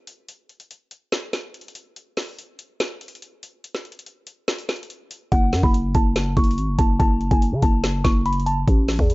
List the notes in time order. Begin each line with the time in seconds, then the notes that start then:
0.07 closed hi-hat
0.29 closed hi-hat
0.49 closed hi-hat
0.60 closed hi-hat
0.71 closed hi-hat
0.91 closed hi-hat
1.12 snare, closed hi-hat
1.33 snare, closed hi-hat
1.54 closed hi-hat
1.61 closed hi-hat
1.68 closed hi-hat
1.75 closed hi-hat
1.96 closed hi-hat
2.17 snare, open hi-hat
2.39 closed hi-hat
2.59 closed hi-hat
2.80 snare, closed hi-hat
3.01 closed hi-hat
3.08 closed hi-hat
3.15 closed hi-hat
3.22 closed hi-hat
3.43 closed hi-hat
3.64 closed hi-hat
3.75 snare
3.85 closed hi-hat
3.92 closed hi-hat
3.99 closed hi-hat
4.06 closed hi-hat
4.27 closed hi-hat
4.48 snare, closed hi-hat
4.58 closed hi-hat
4.69 snare, closed hi-hat
4.76 closed hi-hat
4.83 closed hi-hat
4.90 closed hi-hat
5.11 closed hi-hat
5.32 F#1 F#5, kick, closed hi-hat
5.53 F#2, snare, open hi-hat
5.63 F#1 B5, kick
5.74 closed hi-hat
5.95 F#1 A5, kick, closed hi-hat
6.16 snare, closed hi-hat
6.37 F#1 C#6, kick, closed hi-hat
6.44 closed hi-hat
6.51 closed hi-hat
6.58 G#1, closed hi-hat
6.68 F#1
6.79 F#1 A5, kick, closed hi-hat
6.99 F#1 A5, kick, closed hi-hat
7.21 closed hi-hat
7.31 F#1 G#5, kick, closed hi-hat
7.42 closed hi-hat
7.52 C#3
7.62 F#1 A5, kick, closed hi-hat
7.84 snare, closed hi-hat
8.04 F#1 C#6, kick, snare, closed hi-hat
8.26 B5, closed hi-hat
8.33 closed hi-hat
8.40 closed hi-hat
8.46 A5, closed hi-hat
8.68 A1, kick, closed hi-hat
8.88 snare, open hi-hat
8.99 E2, kick
9.10 closed hi-hat